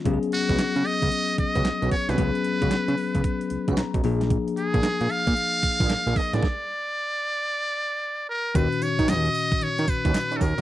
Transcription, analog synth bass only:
X:1
M:4/4
L:1/16
Q:"Swing 16ths" 1/4=113
K:Dbmix
V:1 name="Analog synth bass" clef=bass
D,, z2 D,, D, D, z D,, z2 D,, D,, C,, C,, z =C,, | D,, z2 D,, D, D, z D,, z2 D,, D,, C,, C,, B,,,2- | B,,, z2 B,,, B,, B,, z B,, z2 B,,, B,,, B,,, B,,, z =A,,, | z16 |
E,, z E, E, E,,2 z2 E, E, z E,, z2 E,, z |]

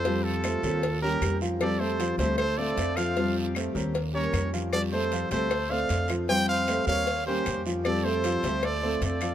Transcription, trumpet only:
X:1
M:4/4
L:1/8
Q:1/4=154
K:F
V:1 name="Trumpet"
c A4 B2 z | d c2 c c d2 f- | f z4 _d2 z | d c2 c2 f2 z |
g f2 f2 c2 z | d c3 d2 d2 |]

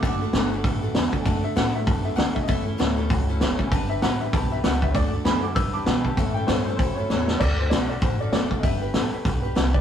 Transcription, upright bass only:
X:1
M:4/4
L:1/8
Q:"Swing" 1/4=195
K:D
V:1 name="Upright bass" clef=bass
F,,,2 G,,,2 A,,,2 E,, z | F,,2 A,,2 F,,2 =F,,2 | E,,2 D,,2 C,,2 F,,,2 | G,,,2 A,,,2 B,,,2 C,,2 |
D,,2 F,,2 G,,2 B,,2 | A,,2 G,,2 F,,2 E,,2 | D,,2 B,,,2 A,,,2 F,,,2 | G,,,2 A,,, z B,,,2 =C,,2 |]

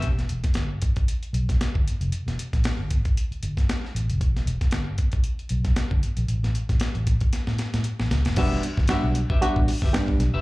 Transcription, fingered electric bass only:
X:1
M:4/4
L:1/16
Q:"Swing 16ths" 1/4=115
K:Em
V:1 name="Fingered electric bass" clef=bass
E,,,2 E,,, z G,,,2 z4 B,,,2 z G,,, z =F,,, | z E,,, z A,,, z G,,,2 z3 G,,, z3 A,,, =F,,, | E,,,2 E,,, z G,,,2 z4 B,,,2 z G,,, z ^A,,, | A,,, A,,, z A,,, z A,,,2 z2 A,, z A,, z A,,, ^C,, =F,,, |
E,,,2 z G,,, z B,,,2 z2 A,,, z G,,, z2 B,,, =F,,, |]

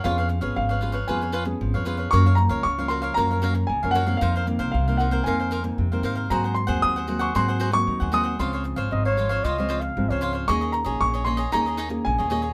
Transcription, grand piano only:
X:1
M:4/4
L:1/16
Q:1/4=115
K:Db
V:1 name="Grand piano"
f4 f4 a4 z4 | d'2 b2 d'2 c'2 b4 a2 g2 | f4 f2 g2 a4 z4 | b2 c'2 e'3 d' c'3 d'3 e'2 |
c'8 z8 | d'2 b2 d'2 c'2 b4 a4 |]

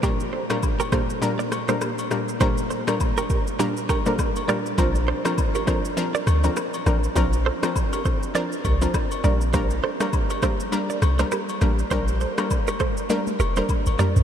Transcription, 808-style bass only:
X:1
M:4/4
L:1/16
Q:"Swing 16ths" 1/4=101
K:Gm
V:1 name="808-style bass" clef=bass
z16 | z16 | B,,,3 z6 z D,,2 z2 A,,,2 | B,,,3 z6 z C,,2 z2 B,,,2- |
B,,,3 z6 z C,,2 z2 A,,,2 | B,,,3 z6 z F,,,2 z G,,, z A,,, |]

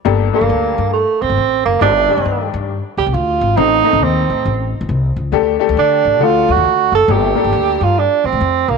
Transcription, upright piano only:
X:1
M:4/4
L:1/8
Q:"Swing" 1/4=137
K:Gm
V:1 name="Upright piano"
[B,DGA] [B,DGA]3 z4 | [DEGc] [E,DGd]3 z4 | [CEAc] [B,CEAe]3 z4 | [A,DGA] [A,DGA]3 [A,D^FA]3 z |
[B,DGA] [B,DGA]3 z4 |]
V:2 name="Upright piano" clef=bass
G,,3 z4 z | G,,3 z4 z | A,,3 z4 z | D,3 z D,3 z |
G,,3 z4 z |]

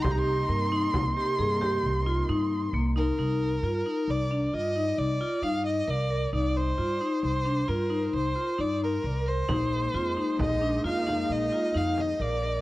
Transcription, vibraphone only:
X:1
M:7/4
L:1/8
Q:1/4=133
K:Cm
V:1 name="Vibraphone"
G2 B E2 G A G2 F E2 B, E | E2 F E2 D F E2 F E2 B B | E2 F E2 D F E2 F E2 B B | E2 F E2 D F E2 F E2 B B |]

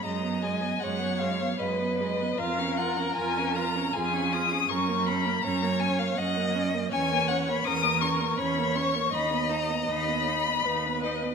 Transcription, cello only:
X:1
M:3/4
L:1/8
Q:1/4=79
K:C#mix
V:1 name="Cello" clef=bass
F,,2 F,,2 F,,2 | E,,2 E,,2 E,,2 | F,,2 F,,2 F,,2 | =E,,2 E,,2 E,,2 |
D,,2 D,,2 D,,2 |]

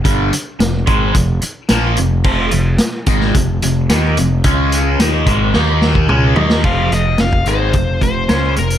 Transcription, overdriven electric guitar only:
X:1
M:4/4
L:1/8
Q:1/4=109
K:Fm
V:1 name="Overdriven electric guitar" clef=bass
[G,,=D,G,] z [F,,C,] [A,,E,A,] [F,,C,] z [B,,F,B,] [F,,C,] | [F,,C,F,] [F,,C,] z [A,,E,A,] [F,,C,] [F,,C,] [E,B,E] [F,,C,] | [D,A,D]2 [E,B,E] [A,,E,A,] [E,B,E]2 [D,A,D] [E,B,E] | [F,,C,F,] [F,,C,] [F,,C,] [A,,E,A,] [F,,C,] [F,,C,] [D,A,D] [F,,C,] |]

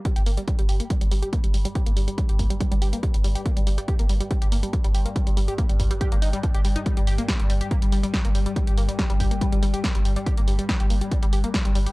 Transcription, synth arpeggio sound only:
X:1
M:4/4
L:1/16
Q:1/4=141
K:Gm
V:1 name="Synth arpeggio sound" clef=bass
G, G B, G, G, G, G B, G, G, G, G B, G, G, G, | G B, G, G, G, G B, G, G, G, G B, G, G, G, G | B, G, G, G, G B, G, G, G, G B, G, G, G, G B, | G, G, G, G B, G, G, G, G B, E G, F, G G, E |
G, G, G B, G, G, G, G B, G, G, G, G B, G, G, | G, G B, G, G, G, G B, G, G, G, G B, G, G, G, | G B, G, G, G, G B, G, G, G, G B, G, G, G, G |]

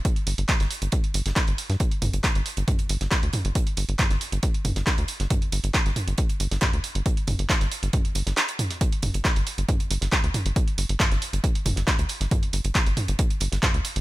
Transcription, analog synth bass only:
X:1
M:4/4
L:1/16
Q:1/4=137
K:Cdor
V:1 name="Analog synth bass" clef=bass
z2 G,,, G,,, z G,,, z G,,, z2 G,,, G,,, z G,,, z G,, | z2 G,,, G,,, z G,,, z G,,, z2 G,,, G,,, z D,, z G,,, | z2 G,,, G,,, z G,,, z G,,, z2 G,,, G,,, z D,, z G,,, | z2 G,,, G,,, z G,,, z G,,, z2 G,,, G,,, z D,, z G,,, |
z2 G,,, G,,, z G,,, z G,,, z2 G,,, G,,, z4 | z2 G,,, G,,, z G,,, z G,,, z2 G,,, G,,, z D,, z G,,, | z2 G,,, G,,, z G,,, z G,,, z2 G,,, G,,, z D,, z G,,, | z2 G,,, G,,, z G,,, z G,,, z2 G,,, G,,, z D,, z G,,, |]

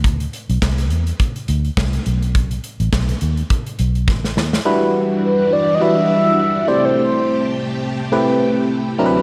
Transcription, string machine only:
X:1
M:4/4
L:1/8
Q:"Swing 16ths" 1/4=104
K:Em
V:1 name="String machine"
z8 | z8 | [E,G,DF]6- [E,G,DF] [C,A,G]- | [C,A,G]6- [C,A,G] [D,,E,CF] |]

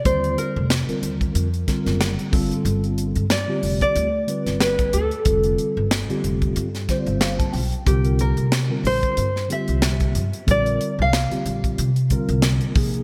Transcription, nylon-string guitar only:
X:1
M:4/4
L:1/16
Q:"Swing 16ths" 1/4=92
K:Cm
V:1 name="Nylon-string guitar"
c2 B12 z2 | z4 d3 d4- d =B2 =A2- | =A12- A2 z2 | G2 B4 c4 =e6 |
d3 f8- f3 z2 |]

